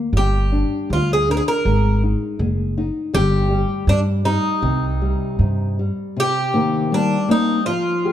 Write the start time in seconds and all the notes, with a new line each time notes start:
Already playing: A#3
0.13 G1 G3
0.17 G4
0.52 D4
0.90 D2 G3 F4
1.13 G#4
1.29 D4 A#4
1.37 G#4
1.48 A#4
1.65 G#1 G#3
2.03 D#4
2.39 F#1 G#3
2.78 D#4
3.14 G1 G3 G4
3.51 G3
3.87 G2 G3 D4
4.25 G3 D#4
4.62 C2 C3
5.02 G3
5.39 G2 C3
5.79 G3
6.16 C3 G4
6.54 D#3 A#3 C4
6.92 G3 D4
7.28 A#3 C4 D#4
7.66 F3 F4
8.05 F4 G4 G#4